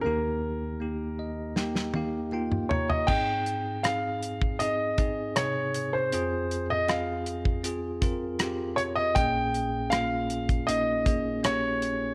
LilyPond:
<<
  \new Staff \with { instrumentName = "Grand piano" } { \time 4/4 \key aes \major \tempo 4 = 79 bes'2. r8 des''16 ees''16 | g''4 f''4 ees''4 des''8. c''16~ | c''8. ees''16 f''4 r4. des''16 ees''16 | g''4 f''4 ees''4 des''4 | }
  \new Staff \with { instrumentName = "Tine electric piano" } { \time 4/4 \key aes \major << { r4. ees''8 g''8 f''8 g''8 bes''8 | r1 | r1 | r1 | } \\ { <bes ees' g'>4 <bes ees' g'>4 <bes ees' g'>8 <bes ees' g'>8 <bes ees' f'>4 | <c' ees' aes'>4 <c' ees' aes'>4 <c' ees' aes'>8 <c' ees' aes'>8 <c ees' aes'>4 | <c' f' aes'>4 <c' f' aes'>4 <c' f' aes'>8 <c' f' bes'>8 <c' f' g'>4 | <bes des' aes'>4 <bes des' f'>4 <bes des' ees'>8 <bes des' aes'>8 <bes des' g'>4 | } >> }
  \new Staff \with { instrumentName = "Tine electric piano" } { \clef bass \time 4/4 \key aes \major <ees, ees>1 | aes,1 | f,1 | <bes,, bes,>1 | }
  \new DrumStaff \with { instrumentName = "Drums" } \drummode { \time 4/4 r4 r4 sn16 sn16 tommh8 r16 toml16 tomfh16 tomfh16 | <cymc bd>8 hh8 <hh ss>8 hh16 bd16 hh8 <hh bd>8 <hh ss>8 hh8 | hh8 hh8 <hh ss>8 hh16 bd16 hh8 <hh bd>8 <hh ss>8 hh8 | <hh bd>8 hh8 <hh ss>8 hh16 <hh bd>16 hh8 <hh bd>8 <hh ss>8 hh8 | }
>>